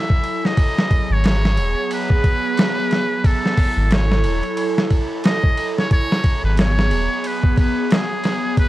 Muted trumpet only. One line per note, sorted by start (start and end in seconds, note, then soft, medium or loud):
0.00 0.47 E5 loud
0.46 1.14 D#5 loud
1.13 1.92 C#5 loud
1.93 3.27 B4 loud
3.26 3.95 A4 loud
3.93 4.92 C#5 medium
5.26 5.74 D#5 loud
5.79 5.91 C#5 loud
5.93 6.41 C#5 loud
6.45 6.57 B4 loud
6.59 7.29 C#5 loud
7.27 7.59 B4 loud
7.59 7.95 B4 medium
7.93 8.59 G#4 medium
8.59 8.69 B4 loud